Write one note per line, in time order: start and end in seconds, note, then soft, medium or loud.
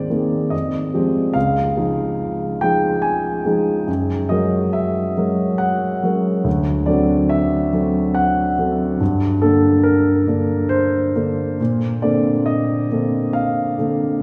0.00 0.55 G#2 soft
0.00 0.10 D#3 soft
0.00 0.11 A#3 soft
0.00 0.11 C4 soft
0.00 0.12 G#4 soft
0.00 0.55 C5 soft
0.00 0.52 D5 medium
0.10 0.48 D#3 soft
0.10 0.49 A#3 soft
0.10 0.49 C4 soft
0.10 0.49 G#4 soft
0.50 0.92 F2 soft
0.50 1.34 D#5 medium
0.94 1.31 F3 soft
0.94 1.31 G#3 soft
0.94 1.31 C4 soft
0.94 1.32 G4 soft
1.33 1.76 C#2 soft
1.33 2.61 F5 medium
1.76 2.58 F3 soft
1.76 2.58 G#3 soft
1.76 2.58 D#4 soft
1.76 2.58 G#4 soft
2.61 3.41 F3 soft
2.61 3.42 G#3 soft
2.61 3.42 D#4 soft
2.61 3.42 G#4 soft
2.61 3.03 G5 medium
3.02 3.87 G#5 medium
3.45 3.84 F3 soft
3.45 3.84 G#3 soft
3.45 3.84 D#4 soft
3.45 3.84 G#4 soft
3.87 4.29 F#2 soft
4.29 5.13 F#3 soft
4.29 5.13 G#3 soft
4.29 5.13 C#4 soft
4.29 5.13 A#4 soft
4.29 4.73 D#5 medium
4.73 5.60 E5 medium
5.17 6.00 F#3 soft
5.17 6.00 G#3 soft
5.17 6.00 C#4 soft
5.17 6.00 A#4 soft
5.58 6.45 F#5 medium
6.03 6.42 F#3 soft
6.03 6.42 G#3 soft
6.03 6.42 C#4 soft
6.03 6.43 A#4 soft
6.44 6.86 D2 soft
6.86 7.68 F#3 soft
6.86 7.69 C4 soft
6.86 7.69 D4 soft
6.86 7.69 A4 soft
6.86 7.29 D5 medium
7.29 8.15 E5 medium
7.73 8.54 F#3 soft
7.73 8.54 C4 soft
7.73 8.55 D4 soft
7.73 8.54 A4 soft
8.14 9.00 F#5 medium
8.59 8.97 F#3 soft
8.59 8.97 C4 soft
8.59 8.97 D4 soft
8.59 8.97 A4 soft
9.00 9.41 G2 soft
9.42 10.23 D3 soft
9.42 10.24 A#3 soft
9.42 10.24 D4 soft
9.42 9.84 A4 medium
9.83 10.71 A#4 medium
10.27 11.11 D3 soft
10.27 11.11 A#3 soft
10.27 11.12 D4 soft
10.27 11.12 A4 soft
10.69 11.58 C5 medium
11.15 11.55 D3 soft
11.15 11.55 A#3 soft
11.15 11.56 D4 soft
11.15 11.56 A4 soft
11.60 12.02 A#2 soft
12.02 12.87 D3 soft
12.02 12.87 A#3 soft
12.02 12.87 C4 soft
12.02 12.87 A4 soft
12.02 12.46 D5 medium
12.46 13.34 D#5 medium
12.91 13.75 D3 soft
12.91 13.75 A#3 soft
12.91 13.76 C4 soft
12.91 13.76 A4 soft
13.33 14.22 F5 medium
13.78 14.18 D3 soft
13.78 14.19 A#3 soft
13.78 14.19 C4 soft
13.78 14.19 A4 soft